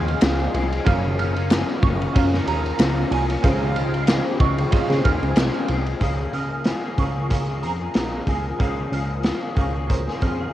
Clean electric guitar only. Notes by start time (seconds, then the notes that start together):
Already playing: C#3 F3 G#3 C4
0.22 C#3 F3 G#3 C4
0.54 C#3 F3 G#3 C4
0.71 F3 G#3 C4
0.85 F#2 C#3 F3 A#3 C#4
1.18 C#3 F3 A#3 C#4
1.35 F3 A#3 C#4
1.50 F#2 C#3 F3 A#3 C#4
1.82 C#3 F3 A#3 C#4
2.32 F3 A#3 C#4
2.47 C#3 F3 A#3 C#4
2.79 F#2 C#3 F3 A#3 C#4
3.11 C#3 F3 A#3 C#4
3.29 F3 A#3 C#4
3.44 C#3 F3 G#3 C4
3.75 C#3 F3 G#3 C4
3.93 F3 G#3 C4
4.07 C#3 F3 G#3 C4
4.39 C#3 F3 G#3 C4
4.89 F3 G#3 C4
5.04 C#3 F3 G#3 C4
5.36 C#3 F3 G#3 C4
5.68 C#3 F3 G#3 C4
5.86 F3 G#3 C4
5.99 C#3 F3 A#3 F4 G#4
6.32 F3 A#3 F4 G#4
6.65 C#3 F3 A#3 F4 G#4
6.83 A#3 F4 G#4
6.98 F3 A#3 F4 G#4
7.15 A#3 F4 G#4
7.48 A#3 F4 G#4
7.63 F3 A#3 F4 G#4
7.81 A#3 F4 G#4
7.95 C#3 F3 A#3 F4 G#4
8.27 F3 A#3 F4 G#4
8.59 C#3 F3 A#3 F4 G#4
8.91 F3 A#3 F4 G#4
9.24 C#3 F3 A#3 F4 G#4
9.42 A#3 F4 G#4
9.57 F3 A#3 F4 G#4
9.75 A#3 F4 G#4
10.07 A#3 F4 G#4
10.22 F3 A#3 F4 G#4
10.40 A#3 F4 G#4